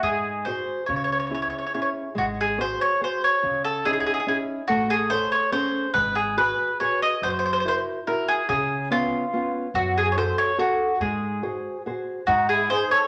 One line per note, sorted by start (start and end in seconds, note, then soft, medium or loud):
0.03 0.58 G#2 medium
0.03 0.44 G#3 medium
0.03 0.47 G#4 medium
0.45 0.80 F#4 soft
0.45 0.81 G#4 soft
0.45 0.85 C5 medium
0.45 0.81 C5 soft
0.86 1.44 C#2 medium
0.86 1.30 C#3 soft
0.86 0.95 C#5 medium
0.96 1.03 C#5 soft
1.04 1.11 C#5 soft
1.12 1.18 C#5 soft
1.20 1.26 C#5 soft
1.27 1.64 C#4 soft
1.27 1.33 C#5 soft
1.31 1.65 E4 soft
1.31 1.65 G#4 soft
1.31 1.41 C#5 soft
1.42 1.49 C#5 soft
1.50 1.57 C#5 soft
1.58 1.65 C#5 soft
1.66 1.73 C#5 soft
1.74 2.08 C#4 soft
1.74 2.08 E4 soft
1.74 2.08 G#4 soft
1.74 1.81 C#5 soft
1.82 1.88 C#5 soft
2.15 2.71 G#1 medium
2.15 2.57 G#3 medium
2.15 2.24 F#4 medium
2.41 2.59 G#4 medium
2.58 2.92 F#4 soft
2.58 2.92 G#4 soft
2.58 2.93 C5 soft
2.58 2.80 C5 medium
2.81 3.00 C#5 medium
3.01 3.35 F#4 soft
3.01 3.35 G#4 soft
3.01 3.35 C5 medium
3.01 3.24 C5 medium
3.24 3.62 C#5 medium
3.43 3.98 C#2 medium
3.43 3.83 C#3 medium
3.64 3.83 A4 medium
3.85 4.19 C#4 soft
3.85 4.19 D#4 soft
3.85 4.19 E4 soft
3.85 3.92 G#4 medium
3.93 3.99 G#4 medium
4.00 4.05 G#4 medium
4.06 4.13 G#4 medium
4.14 4.19 G#4 medium
4.20 4.27 G#4 medium
4.27 4.60 C#4 soft
4.27 4.61 D#4 soft
4.27 4.61 E4 soft
4.27 4.36 G#4 medium
4.68 5.24 A1 medium
4.68 5.10 A3 medium
4.68 4.88 F#4 medium
4.90 5.09 G#4 medium
5.10 5.44 G#4 soft
5.10 5.45 A4 soft
5.10 5.30 C5 loud
5.10 5.45 C#5 medium
5.32 5.51 C#5 medium
5.52 5.86 C#4 medium
5.52 5.86 G#4 soft
5.52 5.86 A4 soft
5.52 5.92 C5 medium
5.94 6.50 G#1 medium
5.94 6.35 G#3 medium
5.94 6.14 B4 medium
6.15 6.35 G#4 medium
6.37 6.71 F#4 soft
6.37 6.71 G#4 soft
6.37 6.77 B4 medium
6.37 6.71 B4 soft
6.80 7.14 F#4 soft
6.80 7.14 G#4 soft
6.80 7.14 B4 soft
6.80 7.00 C#5 medium
7.02 7.21 D#5 medium
7.22 7.77 F#1 medium
7.22 7.64 F#3 medium
7.22 7.29 C5 medium
7.30 7.37 C5 medium
7.39 7.44 C5 medium
7.46 7.52 C5 medium
7.53 7.59 C5 medium
7.60 7.67 C5 medium
7.65 7.99 E4 soft
7.65 7.98 F#4 soft
7.65 7.99 A#4 soft
7.65 7.75 C5 medium
8.07 8.41 E4 soft
8.07 8.41 F#4 soft
8.07 8.27 A#4 medium
8.07 8.41 A#4 soft
8.28 8.47 G#4 medium
8.49 9.03 C#2 medium
8.49 8.89 C#3 medium
8.49 8.88 G#4 medium
8.91 9.24 B3 soft
8.91 9.24 C#4 soft
8.91 9.24 F4 soft
8.91 9.51 F4 medium
9.33 9.66 B3 soft
9.33 9.66 C#4 soft
9.33 9.67 F4 soft
9.74 10.29 F#2 medium
9.74 10.15 F#3 medium
9.74 9.95 F#4 medium
9.98 10.11 G#4 medium
10.12 10.17 C#5 medium
10.17 10.50 F#4 soft
10.17 10.50 G#4 soft
10.17 10.51 A4 medium
10.17 10.37 C5 medium
10.38 10.57 C#5 medium
10.58 10.92 F#4 soft
10.58 10.98 F#4 medium
10.58 10.92 G#4 soft
10.58 10.92 A4 medium
11.00 11.55 G#2 medium
11.00 11.41 G#3 medium
11.00 11.81 G#4 medium
11.43 11.76 F#4 soft
11.43 11.77 G#4 soft
11.43 11.77 C5 soft
11.86 12.19 F#4 soft
11.86 12.20 G#4 soft
11.86 12.19 C5 soft
12.27 12.82 G#2 medium
12.27 12.68 G#3 medium
12.27 12.48 D#4 medium
12.27 12.47 F#4 medium
12.49 12.69 E4 medium
12.49 12.68 G#4 medium
12.70 13.04 D#4 soft
12.70 12.90 G#4 medium
12.70 13.04 G#4 soft
12.70 12.91 C5 loud
12.70 13.04 C5 soft
12.91 13.07 A4 medium
12.91 13.07 C#5 medium